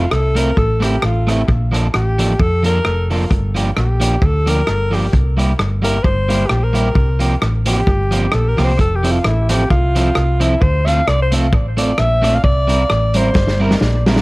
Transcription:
Already playing: alto saxophone F4
0.11 fingered electric bass C2, alto saxophone A4, cross-stick
0.35 clean electric guitar A3 C4 E4 A4, alto saxophone A#4, closed hi-hat
0.57 fingered electric bass A1, alto saxophone A4, kick
0.80 clean electric guitar A3 C4 E4 A4, cross-stick, closed hi-hat
0.84 alto saxophone G4
1.02 fingered electric bass A1, alto saxophone F4, cross-stick
1.27 clean electric guitar A3 C4 E4 A4, alto saxophone E4, cross-stick, closed hi-hat
1.48 fingered electric bass A#1, kick
1.72 clean electric guitar F3 A#3 D4 A4, closed hi-hat
1.94 fingered electric bass A1, alto saxophone G4, cross-stick
2.19 clean electric guitar F3 A#3 D4 A4, closed hi-hat
2.39 fingered electric bass F2, alto saxophone A4, kick
2.63 clean electric guitar F3 A#3 D4 A4, alto saxophone A#4, closed hi-hat
2.85 fingered electric bass F1, cross-stick
3.10 clean electric guitar F3 A#3 D4 A4, alto saxophone F4, open hi-hat
3.31 fingered electric bass G1, kick, hi-hat pedal
3.55 clean electric guitar F3 A#3 D4 G4, closed hi-hat
3.77 fingered electric bass A#1, alto saxophone G4, cross-stick
4.00 clean electric guitar F3 A#3 D4 G4, closed hi-hat
4.22 fingered electric bass D2, alto saxophone A4, kick
4.46 clean electric guitar F3 A#3 D4 G4, alto saxophone A#4, closed hi-hat
4.67 fingered electric bass G1, cross-stick
4.91 clean electric guitar F3 A#3 D4 G4, alto saxophone G4, open hi-hat
5.13 fingered electric bass C2, kick, hi-hat pedal
5.37 clean electric guitar G3 A#3 E4 G4, closed hi-hat
5.59 fingered electric bass G1, cross-stick
5.82 clean electric guitar G3 A#3 E4 G4, alto saxophone A#4, closed hi-hat
6.03 fingered electric bass G1, alto saxophone C5, kick
6.29 clean electric guitar G3 A#3 E4 G4, closed hi-hat
6.47 alto saxophone G4, cross-stick
6.51 fingered electric bass A#1
6.64 alto saxophone A#4
6.73 clean electric guitar G3 A#3 E4 G4, closed hi-hat
6.95 fingered electric bass C2, kick
7.19 clean electric guitar F3 A#3 C4 G4, closed hi-hat
7.42 fingered electric bass A1, cross-stick
7.66 clean electric guitar F3 A#3 C4 G4, alto saxophone G4, closed hi-hat
7.87 fingered electric bass G1, kick
8.11 clean electric guitar F3 A#3 C4 G4, closed hi-hat
8.32 fingered electric bass A#1, alto saxophone A4, cross-stick
8.49 alto saxophone A#4
8.57 fingered electric bass C2, clean electric guitar F3 A#3 C4 G4, cross-stick, open hi-hat
8.65 alto saxophone C5
8.79 fingered electric bass F1, alto saxophone A4, kick, hi-hat pedal
8.96 alto saxophone G4
9.03 clean electric guitar F3 C4 E4 A4, closed hi-hat
9.12 alto saxophone F4
9.24 fingered electric bass A1, alto saxophone E4, cross-stick
9.49 clean electric guitar F3 C4 E4 A4, alto saxophone G4, closed hi-hat
9.70 fingered electric bass C2, alto saxophone F4, kick
9.95 clean electric guitar F3 C4 E4 A4, closed hi-hat
10.15 fingered electric bass C2, cross-stick
10.40 clean electric guitar F3 C4 E4 A4, alto saxophone E4, closed hi-hat
10.62 fingered electric bass D2, alto saxophone C5, kick
10.86 clean electric guitar A3 C4 F4 A4, alto saxophone F5, closed hi-hat
11.08 fingered electric bass C2, alto saxophone D5, cross-stick
11.22 alto saxophone C5
11.32 clean electric guitar A3 C4 F4 A4, closed hi-hat
11.53 fingered electric bass A1, kick
11.77 clean electric guitar A3 C4 F4 A4, alto saxophone D5, closed hi-hat
11.98 fingered electric bass A#1, alto saxophone E5, cross-stick
12.22 clean electric guitar A3 C4 F4 A4, cross-stick, closed hi-hat
12.35 alto saxophone F5
12.44 fingered electric bass C2, alto saxophone D5, kick
12.67 clean electric guitar G3 C4 E4 A#4, closed hi-hat
12.90 fingered electric bass A1, cross-stick
13.14 clean electric guitar G3 C4 E4 A#4, alto saxophone C5, closed hi-hat
13.35 fingered electric bass G1, kick, snare
13.47 snare
13.60 clean electric guitar G3 C4 E4 A#4, alto saxophone A#4
13.71 snare
13.81 fingered electric bass A#1, alto saxophone D5, snare
14.06 clean electric guitar G3 C4 E4 A#4, snare
14.16 snare

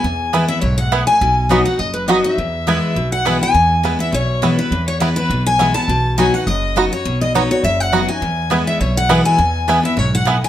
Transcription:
Already playing: fiddle G#5, steel-string acoustic guitar G#5
0.04 upright bass E2, steel-string acoustic guitar E2
0.33 steel-string acoustic guitar E3 G#3 B3 E4, mandolin B3 E4 B4 G#5, five-string banjo B3 E4
0.48 steel-string acoustic guitar B3 E4 E5, fiddle E5
0.61 upright bass B1, steel-string acoustic guitar G#2 C#5, fiddle C#5
0.78 steel-string acoustic guitar F#5, fiddle F#5
0.92 steel-string acoustic guitar A2, mandolin B3 E4 B4 G#5, five-string banjo B3 E4
1.07 steel-string acoustic guitar G#5, fiddle G#5
1.21 upright bass B1, steel-string acoustic guitar B2
1.49 steel-string acoustic guitar F#3 B3 D#4 F#4, mandolin B3 F#4 D#5 B5, five-string banjo B3 D#4 F#4
1.65 steel-string acoustic guitar D#4 F#4 F#5, fiddle F#5
1.79 upright bass F#1, steel-string acoustic guitar F#2 D#5, fiddle D#5
1.94 steel-string acoustic guitar B4, fiddle B4
2.08 steel-string acoustic guitar F#3 B3 D#4 F#4 D#5, mandolin B3 F#4 D#5 B5, five-string banjo B3 D#4 F#4, fiddle D#5
2.23 steel-string acoustic guitar D#4 F#4 E5, fiddle E5
2.38 upright bass E2, steel-string acoustic guitar E2
2.67 steel-string acoustic guitar E3 G#3 B3 E4, mandolin B3 E4 B4 G#5, five-string banjo B3 E4
2.96 upright bass B1, steel-string acoustic guitar B2
3.12 steel-string acoustic guitar F#5, fiddle F#5
3.25 steel-string acoustic guitar E3 G#3 B3 E4, mandolin B3 E4 B4 G#5, five-string banjo B3 E4
3.41 steel-string acoustic guitar B3 E4 G#5, fiddle G#5
3.54 upright bass E2, steel-string acoustic guitar E2
3.83 steel-string acoustic guitar E3 G#3 B3 E4, five-string banjo B3 E4
3.99 steel-string acoustic guitar B3 E4 E5, fiddle E5
4.12 upright bass B1, steel-string acoustic guitar B2 C#5, fiddle C#5
4.42 steel-string acoustic guitar E3 G#3 B3 E4, five-string banjo B3 E4
4.58 steel-string acoustic guitar B3 E4 B4, fiddle B4
4.71 upright bass E2, steel-string acoustic guitar E2
4.88 fiddle C#5, steel-string acoustic guitar C#5
5.00 steel-string acoustic guitar E3 G#3 B3 E4 B4, five-string banjo B3 E4, fiddle B4
5.16 steel-string acoustic guitar B3 E4 B4, fiddle B4
5.30 upright bass B1, steel-string acoustic guitar B2
5.46 steel-string acoustic guitar G#5, fiddle G#5
5.59 steel-string acoustic guitar E3 G#3 B3 E4, five-string banjo B3 E4
5.74 steel-string acoustic guitar B3 E4 A5, fiddle A5
5.88 upright bass B1, steel-string acoustic guitar B2
6.18 steel-string acoustic guitar F#3 B3 D#4 F#4 G#5, five-string banjo B3 D#4 F#4, fiddle G#5
6.34 steel-string acoustic guitar D#4 F#4 F#5, fiddle F#5
6.47 upright bass F#1, steel-string acoustic guitar F#2 D#5, fiddle D#5
6.76 steel-string acoustic guitar F#3 B3 D#4 F#4, five-string banjo B3 D#4 F#4
6.92 steel-string acoustic guitar D#4 F#4 C#5, fiddle C#5
7.05 upright bass B1, steel-string acoustic guitar B2
7.21 steel-string acoustic guitar D#5, fiddle D#5
7.34 steel-string acoustic guitar F#3 B3 D#4 F#4 C#5, five-string banjo B3 D#4 F#4, fiddle C#5
7.51 steel-string acoustic guitar D#4 F#4 C#5, fiddle C#5
7.64 upright bass F#1, steel-string acoustic guitar F#2 E5, fiddle E5
7.80 steel-string acoustic guitar F#5, fiddle F#5
7.92 steel-string acoustic guitar F#3 B3 D#4 F#4, five-string banjo B3 D#4 F#4
8.08 steel-string acoustic guitar D#4 F#4 G#5, fiddle G#5
8.21 upright bass E2, steel-string acoustic guitar E2
8.50 steel-string acoustic guitar E3 G#3 B3 E4, mandolin B3 E4 B4 G#5, five-string banjo B3 E4
8.67 steel-string acoustic guitar E5, fiddle E5
8.80 upright bass B1, steel-string acoustic guitar B2 C#5, fiddle C#5
8.97 fiddle F#5, steel-string acoustic guitar F#5
9.09 steel-string acoustic guitar E3 G#3 B3 E4, mandolin B3 E4 B4 G#5, five-string banjo B3 E4
9.25 steel-string acoustic guitar G#5, fiddle G#5
9.39 steel-string acoustic guitar E2, upright bass E2
9.68 steel-string acoustic guitar E3 G#3 B3 E4, mandolin B3 E4 B4 G#5, five-string banjo B3 E4
9.83 steel-string acoustic guitar B3 E4 E5, fiddle E5
9.97 upright bass B1, steel-string acoustic guitar G#2 C#5, fiddle C#5
10.14 fiddle F#5, steel-string acoustic guitar F#5
10.25 steel-string acoustic guitar A2, mandolin B3 E4 B4 G#5, five-string banjo B3 E4
10.44 fiddle G#5, steel-string acoustic guitar G#5

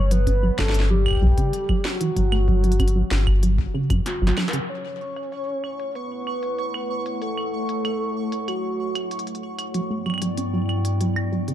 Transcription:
Already playing: sub bass G1, acid bass F#3, soft synth lead C#5
0.11 acid bass F#3, soft synth lead B4, closed hi-hat
0.27 acid bass C#4, kick, closed hi-hat
0.43 acid bass F#3
0.58 sub bass G1, soft synth lead A4, kick, snare, claves
0.69 snare
0.74 closed hi-hat
0.80 snare
0.90 acid bass F#3, soft synth lead G4
1.06 kick, claves
1.08 claves
1.11 kick, claves
1.15 kick, claves
1.17 claves
1.22 sub bass B1, acid bass F#3, kick
1.27 kick
1.32 kick
1.37 acid bass C#3, kick, closed hi-hat
1.53 closed hi-hat
1.69 acid bass F#3, kick, claves
1.85 soft synth lead F#4, snare
2.01 acid bass E3, closed hi-hat
2.16 sub bass G1, acid bass F#3, kick, closed hi-hat
2.32 acid bass A3, claves
2.48 acid bass F#3, kick
2.64 acid bass F#3, closed hi-hat
2.72 closed hi-hat
2.80 acid bass C#4, kick, closed hi-hat, claves
2.88 closed hi-hat
2.95 acid bass F#3
3.11 sub bass G1, snare
3.27 kick, claves
3.43 acid bass F#3, closed hi-hat
3.59 kick
3.74 acid bass C#3
3.90 acid bass F#2, kick, closed hi-hat, claves
4.06 snare, closed hi-hat
4.22 sub bass G1, acid bass F#3
4.27 snare
4.37 acid bass F#3, snare, claves
4.48 snare
4.53 acid bass C#3, closed hi-hat
4.69 ambient pad A3 E4 C#5 F#5, soft synth lead C#5, synth texture C#6, closed hi-hat
5.16 closed hi-hat, claves
5.32 closed hi-hat
5.64 claves
5.80 closed hi-hat
5.95 soft synth lead B4, closed hi-hat
6.27 claves
6.43 closed hi-hat
6.58 closed hi-hat
6.74 claves
7.06 closed hi-hat
7.22 soft synth lead A4, closed hi-hat
7.38 claves
7.69 closed hi-hat
7.85 closed hi-hat, claves
8.32 closed hi-hat
8.48 soft synth lead F#4, closed hi-hat, claves
8.95 closed hi-hat, claves
9.11 closed hi-hat
9.19 closed hi-hat
9.27 closed hi-hat
9.35 closed hi-hat
9.59 closed hi-hat, claves
9.74 ambient pad G2 B3 E4 D5 G5, acid bass F#3, closed hi-hat
9.90 acid bass A3
10.06 acid bass F#3, claves
10.10 claves
10.14 claves
10.18 acid bass F#3, closed hi-hat, claves
10.37 acid bass C#4, closed hi-hat
10.53 acid bass F#3
10.69 claves
10.85 closed hi-hat
11.01 acid bass F#3, closed hi-hat
11.16 claves
11.32 acid bass F#3
11.48 acid bass C#3, closed hi-hat

